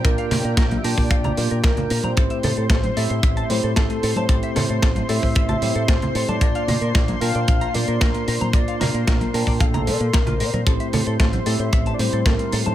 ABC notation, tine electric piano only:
X:1
M:4/4
L:1/8
Q:1/4=113
K:Aphr
V:1 name="Tine electric piano"
[B,DFd]3 [B,DFga]2 [B,DFd]3 | [A,CEGc]3 [A,CEGe]2 [A,CEGc]3 | [A,CEGc]3 [A,CEGe]2 [A,CEGc]3 | [B,DFda]3 [B,DFga]2 [B,DFd]3 |
[B,DFd]3 [B,DFga]2 z3 | [A,CEGc]3 [A,CEGe]2 [G,CEGc]3 |]